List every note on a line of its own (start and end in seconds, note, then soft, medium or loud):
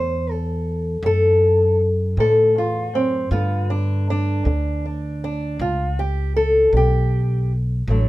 0.00 1.00 E2 medium
0.00 0.57 D3 medium
0.00 0.31 C5 medium
0.31 1.05 A4 medium
1.03 1.72 D2 medium
1.03 2.14 F#2 medium
1.03 1.81 A4 medium
2.17 2.55 D2 medium
2.17 3.28 A2 medium
2.17 2.57 A4 medium
2.55 2.93 E2 medium
2.55 2.95 F4 medium
2.93 3.32 F#2 medium
2.93 3.32 C4 medium
3.31 4.42 G2 medium
3.31 4.01 G2 medium
3.31 4.45 D3 medium
3.31 7.84 B3 soft
3.31 3.70 F4 loud
3.70 4.08 D4 medium
4.10 4.84 D4 loud
4.45 5.56 D2 medium
4.45 5.15 D3 medium
4.86 5.24 D4 soft
5.24 5.61 D4 medium
5.59 6.71 C#2 medium
5.59 6.29 G2 medium
5.59 5.99 F4 medium
5.99 6.36 G4 medium
6.36 6.74 A4 medium
6.73 7.84 B1 medium
6.73 7.43 D3 medium
6.73 7.52 G4 medium
7.88 8.09 A1 medium
7.88 8.09 D2 medium
7.88 8.09 D3 soft
7.88 8.09 F#3 soft
7.88 8.09 A3 soft
7.88 8.09 D4 soft